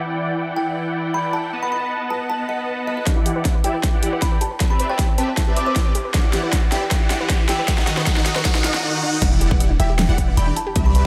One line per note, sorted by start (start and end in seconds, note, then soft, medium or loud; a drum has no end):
0.00 1.50 E3 medium
0.00 1.51 E4 medium
0.00 1.50 D5 medium
0.00 1.51 F#5 medium
0.00 1.50 G5 medium
0.56 0.67 G5 medium
1.14 1.25 B5 medium
1.33 1.57 A5 medium
1.53 3.04 B3 medium
1.53 3.04 B4 medium
1.53 3.04 D#5 medium
1.53 3.04 F#5 medium
1.53 3.04 A5 medium
1.63 1.69 B5 medium
1.72 1.78 B5 medium
2.10 2.21 A5 medium
2.30 2.40 A5 medium
2.49 2.60 D#5 medium
2.87 2.94 D#5 medium
2.97 3.03 D#5 medium
3.06 3.33 E3 medium
3.06 3.12 D4 medium
3.06 3.33 E4 medium
3.06 3.33 G4 medium
3.06 3.33 D5 medium
3.06 3.33 F#5 loud
3.06 kick loud
3.06 snare soft
3.06 closed hi-hat medium
3.06 riser medium
3.16 3.24 E4 medium
3.26 3.31 G4 medium
3.26 closed hi-hat medium
3.36 3.52 E3 medium
3.36 3.52 E4 medium
3.36 3.52 G4 medium
3.36 3.40 B4 loud
3.36 3.52 D5 medium
3.36 3.52 F#5 medium
3.45 3.50 D4 medium
3.45 kick medium
3.45 snare soft
3.45 closed hi-hat medium
3.55 3.60 B4 medium
3.64 3.75 E3 medium
3.64 3.75 E4 medium
3.64 3.75 G4 medium
3.64 3.67 G4 loud
3.64 3.75 D5 medium
3.64 3.75 E5 loud
3.64 3.75 G5 medium
3.64 closed hi-hat medium
3.74 3.77 B4 medium
3.83 3.89 D4 medium
3.83 kick medium
3.83 snare soft
3.83 closed hi-hat medium
3.93 4.20 E3 medium
3.93 4.20 E4 medium
3.93 4.01 E4 medium
3.93 4.20 G4 medium
3.93 4.20 D5 medium
3.93 4.20 F#5 loud
4.03 4.08 G4 medium
4.03 closed hi-hat medium
4.13 4.17 B4 loud
4.22 4.38 E3 medium
4.22 4.27 D4 medium
4.22 4.38 E4 medium
4.22 4.38 G4 medium
4.22 4.38 D5 medium
4.22 4.38 G5 medium
4.22 4.33 B5 medium
4.22 kick medium
4.22 snare medium
4.22 closed hi-hat medium
4.32 4.37 B4 medium
4.41 4.44 G4 loud
4.41 4.64 A5 medium
4.41 closed hi-hat medium
4.51 4.54 B4 medium
4.60 4.87 C4 medium
4.60 4.66 E4 medium
4.60 4.87 G4 medium
4.60 4.87 B4 medium
4.60 4.87 D5 medium
4.60 4.87 E5 loud
4.60 kick loud
4.60 snare medium
4.60 closed hi-hat medium
4.70 4.78 G4 medium
4.70 4.76 B5 medium
4.80 4.85 B4 medium
4.80 4.86 B5 medium
4.80 closed hi-hat medium
4.90 5.06 C4 medium
4.90 5.06 G4 medium
4.90 5.06 B4 medium
4.90 4.94 C5 loud
4.90 5.06 D5 medium
4.90 5.06 E5 medium
4.90 5.00 G5 medium
4.99 5.04 E4 medium
4.99 kick loud
4.99 snare medium
4.99 closed hi-hat medium
5.09 5.14 C5 medium
5.18 5.29 C4 loud
5.18 5.29 G4 medium
5.18 5.29 B4 medium
5.18 5.21 B4 loud
5.18 5.29 D5 medium
5.18 5.29 E5 loud
5.18 5.29 A5 medium
5.18 closed hi-hat medium
5.28 5.31 C5 medium
5.37 5.42 E4 medium
5.37 kick medium
5.37 snare medium
5.37 closed hi-hat medium
5.47 5.74 C4 medium
5.47 5.54 G4 medium
5.47 5.74 G4 medium
5.47 5.74 B4 medium
5.47 5.74 D5 medium
5.47 5.74 E5 loud
5.57 5.62 B4 medium
5.57 5.65 D6 medium
5.57 closed hi-hat medium
5.66 5.71 C5 loud
5.66 5.95 D6 medium
5.76 5.92 C4 medium
5.76 5.81 E4 medium
5.76 5.92 G4 medium
5.76 5.92 B4 medium
5.76 5.92 D5 medium
5.76 5.92 G5 medium
5.76 kick medium
5.76 snare medium
5.76 closed hi-hat medium
5.86 5.91 C5 medium
5.95 5.98 G4 loud
5.95 closed hi-hat medium
6.05 6.08 B4 medium
6.14 6.41 E3 medium
6.14 6.19 D4 medium
6.14 6.41 E4 medium
6.14 6.41 G4 medium
6.14 6.41 D5 medium
6.14 6.41 F#5 medium
6.14 kick loud
6.14 snare medium
6.14 closed hi-hat medium
6.24 6.31 E4 medium
6.33 6.39 G4 medium
6.33 snare medium
6.33 closed hi-hat medium
6.43 6.60 E3 medium
6.43 6.60 E4 medium
6.43 6.60 G4 medium
6.43 6.48 B4 medium
6.43 6.60 D5 medium
6.43 6.60 F#5 medium
6.53 6.58 D4 medium
6.53 kick medium
6.53 snare medium
6.53 closed hi-hat medium
6.63 6.67 B4 medium
6.72 6.83 E3 medium
6.72 6.83 E4 medium
6.72 6.75 G4 medium
6.72 6.83 G4 medium
6.72 6.83 D5 medium
6.72 6.83 E5 loud
6.72 6.83 G5 medium
6.72 snare medium
6.72 closed hi-hat medium
6.82 6.85 B4 medium
6.91 7.18 E3 medium
6.91 6.96 D4 medium
6.91 7.18 E4 medium
6.91 7.18 G4 medium
6.91 7.18 D5 medium
6.91 7.18 F#5 medium
6.91 kick loud
6.91 snare medium
6.91 closed hi-hat medium
7.01 7.08 E4 medium
7.10 7.16 G4 medium
7.10 snare medium
7.10 closed hi-hat medium
7.20 7.37 E3 medium
7.20 7.37 E4 medium
7.20 7.37 G4 medium
7.20 7.25 B4 loud
7.20 7.37 D5 medium
7.20 7.37 F#5 medium
7.30 7.35 D4 medium
7.30 kick medium
7.30 snare medium
7.30 closed hi-hat medium
7.40 7.44 B4 medium
7.49 7.59 E3 medium
7.49 7.59 E4 medium
7.49 7.59 G4 medium
7.49 7.52 G4 loud
7.49 7.59 D5 medium
7.49 7.59 E5 loud
7.49 7.60 G5 medium
7.49 snare medium
7.49 closed hi-hat medium
7.59 7.62 B4 medium
7.68 7.95 D#3 medium
7.68 7.95 D#4 medium
7.68 7.73 D#4 medium
7.68 7.95 F#4 medium
7.68 7.95 D#5 medium
7.68 7.95 F#5 loud
7.68 7.79 F#5 medium
7.68 kick loud
7.68 snare medium
7.68 closed hi-hat medium
7.78 7.85 D#4 medium
7.78 snare medium
7.87 7.92 F#4 medium
7.87 snare medium
7.87 closed hi-hat medium
7.97 8.05 D#3 medium
7.97 8.05 D#4 medium
7.97 8.05 F#4 medium
7.97 8.02 B4 loud
7.97 8.05 D#5 medium
7.97 8.05 F#5 medium
7.97 snare medium
8.06 8.33 D#3 medium
8.06 8.33 D#4 medium
8.06 8.12 D#4 medium
8.06 8.33 F#4 medium
8.06 8.33 D#5 medium
8.06 8.33 F#5 loud
8.06 8.17 F#5 medium
8.06 kick loud
8.06 snare loud
8.06 closed hi-hat medium
8.16 8.24 D#4 medium
8.16 snare medium
8.26 8.31 F#4 medium
8.26 snare loud
8.26 closed hi-hat medium
8.36 8.43 D#3 medium
8.36 8.43 D#4 medium
8.36 8.43 F#4 medium
8.36 8.41 B4 loud
8.36 8.44 D#5 medium
8.36 8.43 F#5 medium
8.36 snare medium
8.45 8.63 D#3 medium
8.45 8.63 D#4 medium
8.45 8.50 D#4 medium
8.45 8.63 F#4 medium
8.45 8.63 D#5 medium
8.45 8.63 F#5 loud
8.45 8.56 F#5 loud
8.45 kick loud
8.45 snare loud
8.45 closed hi-hat medium
8.55 8.62 D#4 medium
8.55 snare medium
8.64 8.82 D#3 medium
8.64 8.82 D#4 medium
8.64 8.69 D#4 medium
8.64 8.82 F#4 medium
8.64 8.82 D#5 medium
8.64 8.82 F#5 loud
8.64 8.75 F#5 medium
8.64 snare loud
8.64 closed hi-hat medium
8.74 8.81 D#4 medium
8.74 snare medium
8.83 9.01 D#3 loud
8.83 9.01 D#4 medium
8.83 9.01 F#4 medium
8.83 9.01 D#5 medium
8.83 9.01 F#5 loud
9.03 9.20 D#3 medium
9.03 9.20 D#4 medium
9.03 9.20 F#4 medium
9.03 9.20 D#5 medium
9.03 9.20 F#5 loud
9.22 9.49 E1 loud
9.22 9.49 E3 medium
9.22 9.27 D4 medium
9.22 9.49 E4 medium
9.22 9.49 G4 medium
9.22 9.49 D5 medium
9.22 9.49 F#5 loud
9.22 kick loud
9.22 closed hi-hat medium
9.22 crash loud
9.22 impact medium
9.32 9.39 E4 medium
9.41 9.49 G4 medium
9.41 closed hi-hat medium
9.51 9.78 E1 medium
9.51 9.67 E3 medium
9.51 9.67 E4 medium
9.51 9.67 G4 medium
9.51 9.56 B4 medium
9.51 9.67 D5 medium
9.51 9.67 F#5 medium
9.51 kick loud
9.60 9.66 D5 medium
9.60 closed hi-hat medium
9.70 9.73 D4 medium
9.80 10.07 E1 loud
9.80 9.90 E3 loud
9.80 9.87 E4 medium
9.80 9.90 E4 medium
9.80 9.90 G4 medium
9.80 9.90 D5 medium
9.80 9.90 E5 loud
9.80 9.91 G5 medium
9.80 closed hi-hat medium
9.90 9.97 G4 loud
9.99 10.04 D4 medium
9.99 snare loud
9.99 closed hi-hat medium
10.09 10.36 E1 loud
10.09 10.35 E3 loud
10.09 10.16 E4 medium
10.09 10.35 E4 medium
10.09 10.35 G4 medium
10.09 10.35 D5 medium
10.09 10.35 F#5 loud
10.18 10.26 G4 medium
10.18 kick medium
10.18 closed hi-hat medium
10.28 10.33 B4 medium
10.37 10.52 E1 loud
10.37 10.54 E3 medium
10.37 10.54 E4 medium
10.37 10.54 G4 medium
10.37 10.54 D5 medium
10.37 10.42 D5 medium
10.37 10.54 G5 medium
10.37 10.48 B5 medium
10.37 closed hi-hat medium
10.47 10.50 D4 medium
10.56 10.64 E4 medium
10.56 10.80 A5 loud
10.56 closed hi-hat medium
10.67 10.74 G4 loud
10.76 11.03 C2 loud
10.76 11.03 C4 medium
10.76 10.81 E4 medium
10.76 11.03 G4 medium
10.76 11.03 B4 medium
10.76 11.03 D5 medium
10.76 11.03 E5 loud
10.76 kick loud
10.76 closed hi-hat medium
10.86 10.93 G4 medium
10.86 10.92 B5 medium
10.95 11.03 B4 medium
10.95 11.02 B5 medium
10.95 closed hi-hat medium